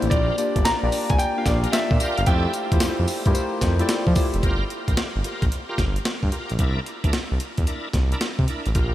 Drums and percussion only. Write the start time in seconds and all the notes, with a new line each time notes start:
0.02 closed hi-hat
0.11 kick, closed hi-hat
0.38 closed hi-hat, tambourine
0.56 kick, closed hi-hat
0.65 snare, closed hi-hat, tambourine
0.92 open hi-hat, tambourine
1.10 kick, closed hi-hat
1.19 closed hi-hat, tambourine
1.46 kick, snare, closed hi-hat, tambourine
1.64 closed hi-hat
1.73 snare, closed hi-hat, tambourine
1.91 kick
2.00 closed hi-hat, tambourine
2.18 closed hi-hat
2.26 kick, closed hi-hat
2.53 closed hi-hat, tambourine
2.72 kick, closed hi-hat
2.80 snare, closed hi-hat, tambourine
3.08 open hi-hat, tambourine
3.26 kick, closed hi-hat
3.35 closed hi-hat, tambourine
3.61 kick, snare, closed hi-hat, tambourine
3.79 closed hi-hat
3.89 snare, closed hi-hat, tambourine
4.07 kick
4.15 kick, open hi-hat, tambourine
4.34 closed hi-hat
4.43 kick, closed hi-hat
4.70 closed hi-hat
4.88 kick, closed hi-hat
4.97 snare, closed hi-hat
5.24 closed hi-hat
5.42 kick, closed hi-hat
5.52 closed hi-hat
5.78 kick, snare, closed hi-hat
5.96 closed hi-hat
6.05 snare, closed hi-hat
6.23 kick
6.32 closed hi-hat
6.49 closed hi-hat
6.59 kick, closed hi-hat
6.86 closed hi-hat
7.04 kick, closed hi-hat
7.13 snare, closed hi-hat
7.40 closed hi-hat
7.57 kick, closed hi-hat
7.67 closed hi-hat
7.93 kick, snare, closed hi-hat
8.12 closed hi-hat
8.21 snare, closed hi-hat
8.39 kick
8.48 closed hi-hat
8.66 closed hi-hat
8.75 kick, closed hi-hat